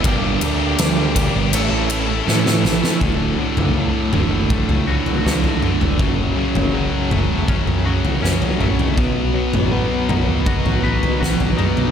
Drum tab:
RD |x-x-x-x-x-x-----|----------------|----------------|----------------|
SD |----o-------oooo|------------o---|------------o---|------------o---|
T2 |----------------|---o--o-o-----o-|---o--o-o-----o-|---o--o-o-----o-|
FT |----------------|o--o--o-oo-o-o-o|o--o--o-oo-o-o-o|o--o--o-oo-o-o-o|
BD |o-----o---------|o-------o-------|o-------o-------|o-------o-------|